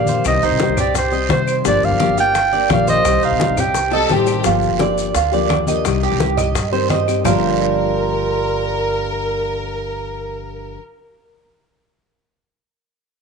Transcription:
Already playing: A#1 D3 F3 A#3 D4 G4 F5
0.07 C5, high conga, short guiro, maracas
0.24 C2 C3 D#3 G3 C4 G4 D#5, high bongo, high conga, long guiro, claves, maracas
0.42 C2 D#4 C5, high bongo, high conga, maracas
0.51 C3
0.60 C3 D#3 G3 C4 G4, high bongo, high conga, short guiro, maracas
0.69 C2
0.77 G3 C4 G4 D5, high conga, low conga, short guiro, claves, maracas
0.94 C5, muted nylon-string guitar stroke, high bongo, high conga, low conga, long guiro, maracas
1.12 G3 C4 G4 D#5, high bongo, high conga, maracas
1.29 C3 D#3 G3 C4 G4 C5, high bongo, low bongo, high conga, short guiro, maracas
1.47 high bongo, high conga, short guiro, claves, maracas
1.64 G1 D3 F3 A#3 D4 G4 D5, high bongo, high conga, long guiro, maracas
1.82 G1 F5, high conga, maracas
1.91 G2
2.00 D3 F3 A#3 D4 G4, high bongo, high conga, short guiro, claves, maracas
2.08 G1
2.18 A#3 D4 F4 G5, short guiro, maracas
2.35 muted nylon-string guitar stroke, high bongo, high conga, long guiro, maracas
2.52 A#3 D4 G4 D5, high conga, maracas
2.69 A#1 D3 F3 A#3 D4 G4 F5, high bongo, low bongo, high conga, short guiro, claves, maracas
2.87 C5 D#5, high conga, short guiro, maracas
3.04 C2 C3 D#3 G3 C4 G4, high bongo, high conga, long guiro, claves, maracas
3.22 C2 D#4 F5, high bongo, high conga, maracas
3.32 C3
3.40 C3 D#3 G3 C4 G4, high bongo, high conga, short guiro, maracas
3.49 C2
3.57 G3 C4 G4 G5, high conga, low conga, short guiro, claves, maracas
3.74 muted nylon-string guitar stroke, high bongo, high conga, long guiro, maracas
3.92 G3 C4 G4 A4 D#5, low bongo, high conga, maracas
4.09 A1 C3 D#3 G3 C4 G4 C5, low bongo, high conga, short guiro, maracas
4.26 low bongo, high conga, short guiro, claves, maracas
4.44 G1 D3 F3 A#3 D4 F4 G4, high bongo, high conga, long guiro, maracas
4.62 high conga, maracas
4.71 G1
4.79 F3 A#3 D4 G4 D5, high bongo, high conga, short guiro, claves, maracas
4.98 short guiro, maracas
5.15 D2 F4, muted nylon-string guitar stroke, high bongo, high conga, long guiro, maracas
5.32 F3 A#3 D4 G4 D5, high conga, maracas
5.50 F3 A#3 D4 G4, high bongo, low bongo, high conga, short guiro, claves, maracas
5.67 F3 A#3 D4 G4 D#5, high conga, short guiro, maracas
5.84 C2 C3 D#3 G3 C4 G4, high bongo, high conga, long guiro, claves, maracas
6.02 G4, high bongo, high conga, maracas
6.12 C2
6.20 D#3 G3 C4 G4, high bongo, high conga, short guiro, maracas
6.37 D#5, high conga, low conga, short guiro, claves, maracas
6.55 G2, muted nylon-string guitar stroke, high bongo, high conga, low conga, long guiro, maracas
6.72 D#3 G3 C4 G4 C5, high bongo, high conga, maracas
6.90 D#3 G3 C4 G4 D#5, high bongo, low bongo, high conga, short guiro, maracas
7.08 D#3 G3 C4 G4, high bongo, high conga, short guiro, claves, maracas
7.24 G1 G2 D3 F3 G3 A#3 D4 F4 G4 A#4, low bongo, low conga, long guiro, claves, maracas

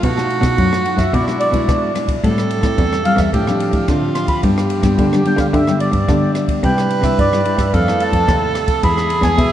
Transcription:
0.03 B2 A3 D#4 F#4, kick, ride
0.18 A3 D#4 F#4, cross-stick
0.30 ride
0.41 B2 A3 D#4 F#4, kick, cross-stick, ride
0.58 F#2 F#3, kick, ride
0.73 cross-stick
0.85 A3 D#4 F#4 F#5, ride
0.97 F#2 E5, kick, cross-stick, ride
1.13 B2 G#3 D4 E4 D5, kick, ride
1.28 G#3 D4 E4, cross-stick
1.40 D5, ride
1.51 B2 G#3 D4 E4, kick, ride
1.68 B2, kick, cross-stick, ride
1.95 G#3 D4 E4, cross-stick, ride
2.08 kick, ride
2.23 A2 G3 C4 E4 A4, kick, ride
2.38 cross-stick
2.50 ride
2.62 A2 G3 C4 E4, kick, cross-stick, ride
2.78 E2 E3, kick, ride
2.93 cross-stick
3.05 G3 C4 E4 F5, ride
3.16 E2 E5, kick, cross-stick, ride
3.33 A2 F3 C4 D4 G4, kick, ride
3.47 F3 C4 D4, cross-stick
3.60 ride
3.71 A2, kick, ride
3.88 A2 D3 F3 C4 D4 F4, kick, cross-stick, ride
4.15 C6, cross-stick, ride
4.28 B5, kick, ride
4.43 G2 G3 B3 D4 G4, kick, ride
4.58 cross-stick
4.70 ride
4.82 G2 G3 B3 D4, kick, cross-stick, ride
4.98 D3, kick, ride
5.13 G3 B3 D4, cross-stick
5.25 G3 B3 D4 G5, ride
5.37 D3 F5, kick, cross-stick, ride
5.54 G2 D3 E5, kick, ride
5.67 G3 B3 D4, cross-stick
5.80 D5, ride
5.92 G2, kick, ride
6.09 D3 G3 B3 D4, kick, cross-stick, ride
6.35 cross-stick, ride
6.48 kick, ride
6.63 C3 G3 D4 E4 B4 G5, kick, ride
6.78 cross-stick
6.90 ride
7.02 C3 G3 D4 E4 E5, kick, cross-stick, ride
7.18 G2 G3 D5, kick, ride
7.33 G3 D4 E4, cross-stick
7.45 D4 E4, ride
7.57 G2 E5, kick, cross-stick, ride
7.73 F2 F3 A3 C4 E4 A4 F5, kick, ride
7.87 A3 C4 E4, cross-stick
8.00 A5, ride
8.12 F2, kick, ride
8.28 D#2 C3 A3 C4 E4, kick, cross-stick, ride
8.55 cross-stick, ride
8.68 kick, ride
8.83 E2 E3 G#3 B3 E4 G#4 B5, kick, ride
8.98 cross-stick
9.10 ride
9.22 E2 G#3 B3 E4 G#5, kick, cross-stick, ride
9.38 B2 E5, kick, ride

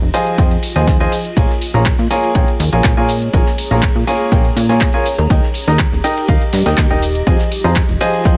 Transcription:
Already playing: F4 D#5 G#5 A#5
0.02 F1
0.14 F3 F4 G#4 C5 D#5 G#5, open hi-hat, ride
0.27 closed hi-hat
0.38 F2 F3 F4 G#4 C5 D#5 G5, kick, closed hi-hat, ride
0.51 closed hi-hat
0.63 open hi-hat, ride
0.76 D#2 F3 F4 G#4 C5 D#5 G#5, snare, closed hi-hat
0.87 kick, snare, closed hi-hat, ride
1.00 F3 F4 G#4 C5 D#5 G#5, ride
1.12 open hi-hat, ride
1.25 closed hi-hat
1.37 A#1 A#3 F4 G#4 A#4 C#5 G#5, kick, closed hi-hat, ride
1.50 snare
1.61 open hi-hat, ride
1.74 A#1 A#3 F4 G#4 A#4 C#5 A#5
1.86 kick, snare, clap, closed hi-hat, ride
1.98 A#2, snare
2.10 A#3 F4 G#4 A#4 C#5 G#5, snare, open hi-hat, ride
2.23 closed hi-hat, ride
2.35 A#1 A#3 F4 G#4 A#4 C#5 G5, kick, closed hi-hat, ride
2.44 A#5, closed hi-hat
2.59 D#2, snare, open hi-hat, ride
2.73 A#1 A#3 F4 G#4 A#4 C#5 G#5, closed hi-hat
2.84 A#1, kick, snare, clap, closed hi-hat, ride
2.97 A#2 A#3 F4 G#4 A#4 C#5 G#5
3.08 open hi-hat, ride
3.22 closed hi-hat
3.33 A#1 A#3 F4 G#4 A#4 C#5 G#5, kick, closed hi-hat, ride
3.46 snare
3.58 open hi-hat, ride
3.71 A#1 A#3 F4 G#4 A#4 C#5 A#5
3.82 kick, snare, clap, closed hi-hat, ride
3.96 A#2
4.07 A#3 F4 G#4 A#4 C#5 G#5, open hi-hat, ride
4.20 closed hi-hat
4.32 A#1 A#3 F4 G#4 A#4 C#5 G5, kick, closed hi-hat, ride
4.45 closed hi-hat
4.56 A#2, open hi-hat, ride
4.69 A#3 F4 G#4 A#4 C#5 G#5, snare, closed hi-hat
4.80 kick, snare, clap, closed hi-hat, ride
4.93 F4 G#4 A#4 C#5 G#5, ride
5.06 G4, open hi-hat, ride
5.18 D#2 D#5, closed hi-hat
5.30 D#2 D#4 A#4 D#5 G5, kick, closed hi-hat, ride
5.43 snare
5.54 open hi-hat, ride
5.68 D#2 D#4 A#4 D#5 A#5
5.79 kick, snare, clap, closed hi-hat, ride
5.92 D#1, snare
6.04 D#4 A#4 D#5 G5, snare, open hi-hat, ride
6.17 closed hi-hat, ride
6.28 D#2 D#4 A#4 D#5 F5, kick, closed hi-hat, ride
6.41 closed hi-hat
6.53 G2, snare, open hi-hat, ride
6.66 D#2 D#4 A#4 D#5 G5, snare, closed hi-hat, ride
6.78 D#2, kick, snare, clap, closed hi-hat, ride
6.90 D#1 D#4 A#4 D#5 G5
7.02 open hi-hat, ride
7.15 closed hi-hat
7.27 F2 F3 F4 G#4 C5 D#5 G#5, kick, closed hi-hat, ride
7.39 snare, closed hi-hat
7.51 open hi-hat, ride
7.64 F2 F3 F4 G#4 C5 D#5 A#5
7.76 kick, snare, clap, closed hi-hat, ride
7.88 F1 G#5, closed hi-hat
8.01 F3 F4 G#4 C5 D#5 G#5, open hi-hat, ride
8.13 closed hi-hat
8.25 F2 F3 F4 G#4 C5 D#5 G5, kick, closed hi-hat, ride

